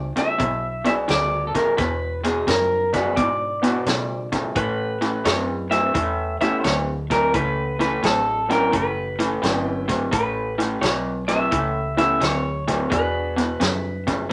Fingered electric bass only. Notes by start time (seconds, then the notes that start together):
Already playing: C#2
0.40 B1
1.09 D2
1.79 E2
2.47 F#2
3.17 G#2
3.86 B2
4.56 A2
5.25 F#2
5.95 E2
6.41 muted fingered electric bass stroke
6.65 D2
7.34 C#2
8.03 A1
8.73 F#1
9.43 G1
10.13 A1
10.82 B1
11.52 C#2
12.21 D2
12.91 E2
13.61 F#2